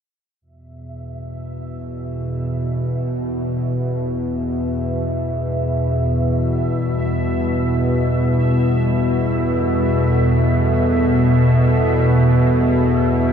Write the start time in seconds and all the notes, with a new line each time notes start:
0.41 E2 B2 G3 E5
1.00 E4
1.37 E5
3.05 B4
8.71 A4